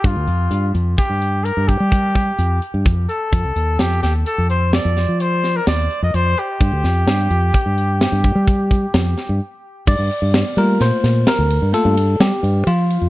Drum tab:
CC |--------------|--------------|--------------|x-------------|
RD |--------------|--------------|--------------|-xxxxxxxxxxxxx|
HH |xxxxxxxxxxxxxx|xxxxxxxxxxxxxx|xxxxxxxxxxxx--|--------------|
SD |--------------|--oo--oo-oo---|-oo---o---oo--|--o-ooo---o---|
BD |o---o--ooo--o-|o-------------|o---o--ooo----|o-------------|